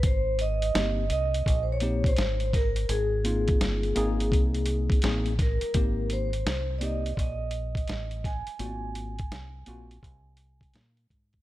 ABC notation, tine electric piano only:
X:1
M:4/4
L:1/8
Q:"Swing 16ths" 1/4=84
K:Ab
V:1 name="Tine electric piano"
z2 [B,CEG] z2 [B,CEG] z2 | z [B,CEF]2 [B,CEA]3 [B,CEA] z | [B,CEG] z2 [B,CEG] z4 | [B,_C=CF_G] z2 [B,CFG] z4 |]